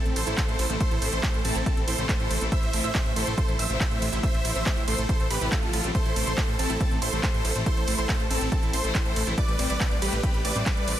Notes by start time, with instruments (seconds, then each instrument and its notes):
Already playing: supersaw synth C4 A4 A5
0.05 analog synth bass A1, string section C3 E3 A3 E4, synth pluck A3, closed hi-hat
0.16 analog synth bass A1, synth pluck A3, supersaw synth A4 C5 C6, open hi-hat, ride
0.27 analog synth bass A1, string section C3 E3 A3 E4, synth pluck E4, closed hi-hat
0.38 synth pluck A3, supersaw synth A4 C5 C6, kick, clap, closed hi-hat
0.48 analog synth bass A1, string section C3 E3 A3 E4, synth pluck A3, closed hi-hat
0.59 analog synth bass A1, synth pluck E4, open hi-hat, ride
0.70 analog synth bass A1, string section C3 E3 A3 E4, synth pluck A3, closed hi-hat
0.80 string section C3 E3 A3 E4, synth pluck A3, supersaw synth A4 C5 C6, kick, closed hi-hat
0.91 analog synth bass A1, synth pluck E4, closed hi-hat
1.02 analog synth bass A1, string section C3 E3 A3 E4, synth pluck A3, open hi-hat, ride
1.13 analog synth bass A1, synth pluck A3, supersaw synth A4 C5 C6, closed hi-hat
1.23 string section E3 A3 E4, synth pluck E4, kick, clap, closed hi-hat
1.34 analog synth bass A1, synth pluck A3, closed hi-hat
1.45 analog synth bass A1, string section C3 E3 A3 E4, synth pluck A3, supersaw synth C4 A4 A5, open hi-hat, ride
1.55 analog synth bass A1, synth pluck E4, closed hi-hat
1.66 string section C3 E3 A3 E4, synth pluck A3, supersaw synth C4 A4 A5, kick, closed hi-hat
1.77 analog synth bass A1, string section C3 E3 A3 E4, synth pluck A3, closed hi-hat
1.88 analog synth bass A1, synth pluck E4, supersaw synth A4 C5 C6, open hi-hat, ride
1.98 analog synth bass A1, string section C3 E3 A3 E4, synth pluck A3, closed hi-hat
2.09 synth pluck A3, supersaw synth A4 C5 C6, kick, clap, closed hi-hat
2.20 analog synth bass A1, string section C3 E3 A3 E4, synth pluck E4, closed hi-hat
2.31 analog synth bass A1, synth pluck A3, open hi-hat, ride
2.41 analog synth bass A1, string section C3 E3 A3 E4, synth pluck A3, closed hi-hat
2.52 string section C3 F3 A3 E4, synth pluck E4, supersaw synth C5 E5 E6, kick, closed hi-hat
2.63 analog synth bass A1, synth pluck A3, closed hi-hat
2.73 analog synth bass A1, string section C3 F3 A3 E4, synth pluck A3, open hi-hat, ride
2.84 analog synth bass A1, synth pluck E4, supersaw synth C5 E5 E6, closed hi-hat
2.95 string section C3 F3 E4, synth pluck A3, kick, clap, closed hi-hat
3.06 analog synth bass A1, synth pluck A3, closed hi-hat
3.16 analog synth bass A1, string section C3 F3 A3 E4, synth pluck E4, supersaw synth A4 C5 C6, open hi-hat, ride
3.27 analog synth bass A1, synth pluck A3, closed hi-hat
3.38 string section C3 F3 A3 E4, synth pluck A3, supersaw synth A4 C5 C6, kick, closed hi-hat
3.48 analog synth bass A1, string section C3 F3 A3 E4, synth pluck E4, closed hi-hat
3.59 analog synth bass A1, synth pluck A3, supersaw synth C5 E5 E6, open hi-hat, ride
3.70 analog synth bass A1, string section C3 F3 A3 E4, synth pluck A3, closed hi-hat
3.80 synth pluck E4, supersaw synth C5 E5 E6, kick, clap, closed hi-hat
3.91 analog synth bass A1, string section C3 F3 A3 E4, synth pluck A3, closed hi-hat
4.02 analog synth bass A1, synth pluck A3, open hi-hat, ride
4.13 analog synth bass A1, string section C3 F3 A3 E4, synth pluck E4, closed hi-hat
4.23 string section C3 F3 A3 E4, synth pluck A3, supersaw synth C5 E5 E6, kick, closed hi-hat
4.34 analog synth bass A1, synth pluck A3, closed hi-hat
4.45 analog synth bass A1, string section C3 F3 A3 E4, synth pluck E4, open hi-hat, ride
4.55 analog synth bass A1, synth pluck A3, supersaw synth C5 E5 E6, closed hi-hat
4.66 string section C3 F3 A3 E4, synth pluck A3, kick, clap, closed hi-hat
4.77 analog synth bass A1, synth pluck E4, closed hi-hat
4.88 analog synth bass A1, string section C3 F3 A3 E4, synth pluck A3, supersaw synth A4 C5 C6, open hi-hat, ride
4.98 analog synth bass A1, synth pluck A3, closed hi-hat
5.09 string section C3 F3 A3 E4, synth pluck E4, supersaw synth A4 C5 C6, kick, closed hi-hat
5.20 analog synth bass A1, string section C3 F3 A3 E4, synth pluck A3, closed hi-hat
5.31 analog synth bass A1, synth pluck A3, supersaw synth G4 B4 B5, open hi-hat, ride
5.41 analog synth bass A1, string section C3 F3 A3 E4, synth pluck E4, closed hi-hat
5.52 synth pluck A3, supersaw synth F4 A4 A5, kick, clap, closed hi-hat
5.63 analog synth bass A1, string section C3 F3 A3 E4, synth pluck A3, closed hi-hat
5.73 analog synth bass A1, synth pluck E4, open hi-hat, ride
5.84 analog synth bass A1, string section C3 F3 A3 E4, synth pluck A3, closed hi-hat
5.95 string section C3 E3 A3 E4, synth pluck A3, supersaw synth A4 C5 C6, kick, closed hi-hat
6.06 analog synth bass A1, synth pluck E4, closed hi-hat
6.16 analog synth bass A1, string section C3 E3 A3 E4, synth pluck A3, open hi-hat, ride
6.27 analog synth bass A1, synth pluck A3, supersaw synth A4 C5 C6, closed hi-hat
6.38 string section C3 E3 A3 E4, synth pluck E4, kick, clap, closed hi-hat
6.48 analog synth bass A1, synth pluck A3, closed hi-hat
6.59 analog synth bass A1, string section C3 E3 A3 E4, synth pluck A3, supersaw synth C4 A4 A5, open hi-hat, ride
6.70 analog synth bass A1, synth pluck E4, closed hi-hat
6.80 string section C3 E3 A3 E4, synth pluck A3, supersaw synth C4 A4 A5, kick, closed hi-hat
6.91 analog synth bass A1, string section C3 E3 A3 E4, synth pluck A3, closed hi-hat
7.02 analog synth bass A1, synth pluck E4, supersaw synth A4 C5 C6, open hi-hat, ride
7.13 analog synth bass A1, string section C3 E3 A3 E4, synth pluck A3, closed hi-hat
7.23 supersaw synth A4 C5 C6, kick, clap, closed hi-hat
7.34 analog synth bass A1, string section C3 E3 A3 E4, synth pluck E4, closed hi-hat
7.45 analog synth bass A1, synth pluck A3, open hi-hat, ride
7.56 analog synth bass A1, string section C3 E3 A3 E4, synth pluck A3, closed hi-hat
7.66 string section C3 E3 A3 E4, synth pluck E4, supersaw synth A4 C5 C6, kick, closed hi-hat
7.77 analog synth bass A1, synth pluck A3, closed hi-hat
7.88 analog synth bass A1, string section C3 E3 A3 E4, synth pluck A3, open hi-hat, ride
7.98 analog synth bass A1, synth pluck E4, supersaw synth A4 C5 C6, closed hi-hat
8.09 string section C3 E3 A3 E4, synth pluck A3, kick, clap, closed hi-hat
8.20 analog synth bass A1, synth pluck A3, closed hi-hat
8.30 analog synth bass A1, string section C3 E3 A3 E4, supersaw synth C4 A4 A5, synth pluck E4, open hi-hat, ride
8.41 analog synth bass A1, synth pluck A3, closed hi-hat
8.52 string section C3 E3 A3 E4, synth pluck A3, supersaw synth C4 A4 A5, kick, closed hi-hat
8.63 analog synth bass A1, string section C3 E3 A3 E4, synth pluck E4, closed hi-hat
8.73 analog synth bass A1, synth pluck A3, supersaw synth A4 C5 C6, open hi-hat, ride
8.84 analog synth bass A1, string section C3 E3 A3 E4, synth pluck A3, closed hi-hat
8.95 synth pluck E4, supersaw synth A4 C5 C6, kick, clap, closed hi-hat
9.05 analog synth bass A1, string section C3 E3 A3 E4, synth pluck A3, closed hi-hat
9.16 analog synth bass A1, synth pluck A3, open hi-hat, ride
9.27 analog synth bass A1, string section C3 E3 A3 E4, synth pluck E4, closed hi-hat
9.38 string section C3 G3 A3 E4, synth pluck G3, supersaw synth B4 D5 D6, kick, closed hi-hat
9.48 analog synth bass A1, synth pluck G3, closed hi-hat
9.59 analog synth bass A1, string section C3 G3 A3 E4, synth pluck C4, open hi-hat, ride
9.70 analog synth bass A1, synth pluck G3, supersaw synth B4 D5 D6, closed hi-hat
9.80 string section C3 G3 A3 E4, kick, clap, closed hi-hat
9.91 analog synth bass A1, synth pluck C4, closed hi-hat
10.02 analog synth bass A1, string section C3 G3 A3 E4, synth pluck G3, supersaw synth G4 B4 B5, open hi-hat, ride
10.13 analog synth bass A1, synth pluck G3, closed hi-hat
10.23 string section C3 G3 A3 E4, synth pluck C4, supersaw synth G4 B4 B5, kick, closed hi-hat
10.34 analog synth bass A1, string section C3 G3 A3 E4, synth pluck G3, closed hi-hat
10.45 analog synth bass A1, synth pluck G3, supersaw synth B4 D5 D6, open hi-hat, ride
10.55 analog synth bass A1, string section C3 G3 A3 E4, synth pluck C4, closed hi-hat
10.66 synth pluck G3, supersaw synth B4 D5 D6, kick, clap, closed hi-hat
10.77 analog synth bass A1, string section C3 G3 A3 E4, synth pluck G3, closed hi-hat
10.88 analog synth bass A1, synth pluck C4, open hi-hat, ride